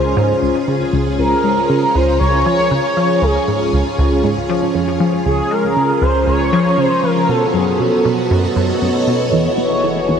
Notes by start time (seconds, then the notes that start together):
Already playing: C#2 C#4 F4 G#4 C5
0.17 G#2
0.43 C#2
0.68 C#3
0.93 C#2
1.19 C#2 A#4
1.44 G#3
1.70 C#3
1.94 C#2 C5
2.19 C#2 C#5
2.45 F3 C#5
2.71 C#3
2.97 F3
3.21 C#2 G#4
3.48 G#2
3.73 C#2
3.99 C#2
4.24 G#2
4.49 F3
4.75 F2
5.00 F3
5.26 C#2 G#4
5.51 G#3 A#4
5.76 C#3
6.02 C#2 C5
6.27 C#2 C#5
6.53 F3
6.78 C#3 C5
7.03 F3 A#4
7.29 B2 B3 A4
7.36 F#4
7.54 F#2 G#4
7.80 B2 A4
8.05 B2
8.20 A4 C#5 D#5
8.31 F#2
8.56 F#2
8.82 F#2
9.07 B2
9.32 E1 E2 E4
9.58 B3 G#4 C#5
9.84 E3
10.09 E2